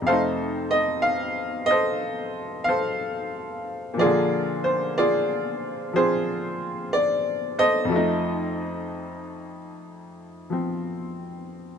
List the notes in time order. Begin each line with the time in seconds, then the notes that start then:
0.02 F2
0.06 C3 A3 A4 C5 F5
0.12 D#4
0.71 D#5
1.02 F5
1.66 D#5
1.70 A4 C5
2.64 F5
2.68 A4 C5
3.94 A#2 F3
3.99 A#3 F4 G#4 D5
4.04 D3
4.64 C5
4.98 F4 G#4 D5
5.93 F3 C4 F4 G#4 C5
6.93 D5
7.59 A4 C5 D#5
7.85 F2 F3
7.92 A3
7.96 D#4
10.50 F3 C4